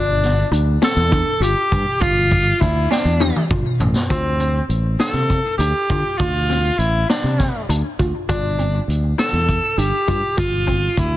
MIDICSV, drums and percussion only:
0, 0, Header, 1, 2, 480
1, 0, Start_track
1, 0, Key_signature, -1, "minor"
1, 0, Tempo, 597015
1, 1622, Time_signature, 7, 3, 24, 8
1, 8980, End_track
2, 0, Start_track
2, 0, Title_t, "Drums"
2, 187, Note_on_c, 9, 38, 36
2, 187, Note_on_c, 9, 42, 53
2, 267, Note_off_c, 9, 38, 0
2, 267, Note_off_c, 9, 42, 0
2, 426, Note_on_c, 9, 42, 55
2, 506, Note_off_c, 9, 42, 0
2, 661, Note_on_c, 9, 38, 113
2, 661, Note_on_c, 9, 42, 82
2, 742, Note_off_c, 9, 38, 0
2, 742, Note_off_c, 9, 42, 0
2, 902, Note_on_c, 9, 36, 70
2, 903, Note_on_c, 9, 42, 58
2, 983, Note_off_c, 9, 36, 0
2, 983, Note_off_c, 9, 42, 0
2, 1145, Note_on_c, 9, 42, 88
2, 1226, Note_off_c, 9, 42, 0
2, 1383, Note_on_c, 9, 36, 85
2, 1388, Note_on_c, 9, 42, 60
2, 1463, Note_off_c, 9, 36, 0
2, 1469, Note_off_c, 9, 42, 0
2, 1620, Note_on_c, 9, 42, 81
2, 1621, Note_on_c, 9, 36, 104
2, 1700, Note_off_c, 9, 42, 0
2, 1702, Note_off_c, 9, 36, 0
2, 1861, Note_on_c, 9, 36, 67
2, 1862, Note_on_c, 9, 42, 64
2, 1941, Note_off_c, 9, 36, 0
2, 1942, Note_off_c, 9, 42, 0
2, 2102, Note_on_c, 9, 36, 66
2, 2103, Note_on_c, 9, 42, 63
2, 2182, Note_off_c, 9, 36, 0
2, 2184, Note_off_c, 9, 42, 0
2, 2342, Note_on_c, 9, 38, 64
2, 2423, Note_off_c, 9, 38, 0
2, 2581, Note_on_c, 9, 47, 75
2, 2662, Note_off_c, 9, 47, 0
2, 2702, Note_on_c, 9, 47, 61
2, 2783, Note_off_c, 9, 47, 0
2, 2820, Note_on_c, 9, 36, 103
2, 2820, Note_on_c, 9, 45, 77
2, 2900, Note_off_c, 9, 36, 0
2, 2900, Note_off_c, 9, 45, 0
2, 3056, Note_on_c, 9, 43, 96
2, 3137, Note_off_c, 9, 43, 0
2, 3177, Note_on_c, 9, 38, 75
2, 3258, Note_off_c, 9, 38, 0
2, 3296, Note_on_c, 9, 42, 75
2, 3298, Note_on_c, 9, 36, 93
2, 3377, Note_off_c, 9, 42, 0
2, 3379, Note_off_c, 9, 36, 0
2, 3537, Note_on_c, 9, 42, 46
2, 3617, Note_off_c, 9, 42, 0
2, 3777, Note_on_c, 9, 42, 51
2, 3857, Note_off_c, 9, 42, 0
2, 4017, Note_on_c, 9, 38, 103
2, 4017, Note_on_c, 9, 42, 76
2, 4097, Note_off_c, 9, 38, 0
2, 4097, Note_off_c, 9, 42, 0
2, 4257, Note_on_c, 9, 42, 51
2, 4261, Note_on_c, 9, 36, 60
2, 4338, Note_off_c, 9, 42, 0
2, 4341, Note_off_c, 9, 36, 0
2, 4499, Note_on_c, 9, 42, 77
2, 4580, Note_off_c, 9, 42, 0
2, 4740, Note_on_c, 9, 42, 58
2, 4742, Note_on_c, 9, 36, 75
2, 4820, Note_off_c, 9, 42, 0
2, 4823, Note_off_c, 9, 36, 0
2, 4980, Note_on_c, 9, 42, 76
2, 4984, Note_on_c, 9, 36, 99
2, 5060, Note_off_c, 9, 42, 0
2, 5064, Note_off_c, 9, 36, 0
2, 5223, Note_on_c, 9, 38, 32
2, 5223, Note_on_c, 9, 42, 53
2, 5303, Note_off_c, 9, 38, 0
2, 5303, Note_off_c, 9, 42, 0
2, 5461, Note_on_c, 9, 42, 52
2, 5541, Note_off_c, 9, 42, 0
2, 5705, Note_on_c, 9, 38, 98
2, 5705, Note_on_c, 9, 42, 80
2, 5786, Note_off_c, 9, 38, 0
2, 5786, Note_off_c, 9, 42, 0
2, 5946, Note_on_c, 9, 38, 31
2, 5946, Note_on_c, 9, 42, 55
2, 5948, Note_on_c, 9, 36, 66
2, 6027, Note_off_c, 9, 38, 0
2, 6027, Note_off_c, 9, 42, 0
2, 6028, Note_off_c, 9, 36, 0
2, 6188, Note_on_c, 9, 42, 77
2, 6269, Note_off_c, 9, 42, 0
2, 6427, Note_on_c, 9, 42, 59
2, 6428, Note_on_c, 9, 36, 72
2, 6508, Note_off_c, 9, 36, 0
2, 6508, Note_off_c, 9, 42, 0
2, 6667, Note_on_c, 9, 42, 80
2, 6668, Note_on_c, 9, 36, 103
2, 6747, Note_off_c, 9, 42, 0
2, 6749, Note_off_c, 9, 36, 0
2, 6908, Note_on_c, 9, 42, 52
2, 6988, Note_off_c, 9, 42, 0
2, 7152, Note_on_c, 9, 42, 51
2, 7233, Note_off_c, 9, 42, 0
2, 7389, Note_on_c, 9, 38, 89
2, 7389, Note_on_c, 9, 42, 75
2, 7469, Note_off_c, 9, 38, 0
2, 7469, Note_off_c, 9, 42, 0
2, 7626, Note_on_c, 9, 42, 57
2, 7627, Note_on_c, 9, 36, 63
2, 7706, Note_off_c, 9, 42, 0
2, 7708, Note_off_c, 9, 36, 0
2, 7866, Note_on_c, 9, 42, 67
2, 7947, Note_off_c, 9, 42, 0
2, 8106, Note_on_c, 9, 36, 63
2, 8106, Note_on_c, 9, 42, 56
2, 8186, Note_off_c, 9, 36, 0
2, 8186, Note_off_c, 9, 42, 0
2, 8345, Note_on_c, 9, 36, 106
2, 8347, Note_on_c, 9, 42, 65
2, 8425, Note_off_c, 9, 36, 0
2, 8427, Note_off_c, 9, 42, 0
2, 8585, Note_on_c, 9, 36, 63
2, 8588, Note_on_c, 9, 42, 56
2, 8665, Note_off_c, 9, 36, 0
2, 8669, Note_off_c, 9, 42, 0
2, 8823, Note_on_c, 9, 36, 64
2, 8824, Note_on_c, 9, 42, 58
2, 8904, Note_off_c, 9, 36, 0
2, 8904, Note_off_c, 9, 42, 0
2, 8980, End_track
0, 0, End_of_file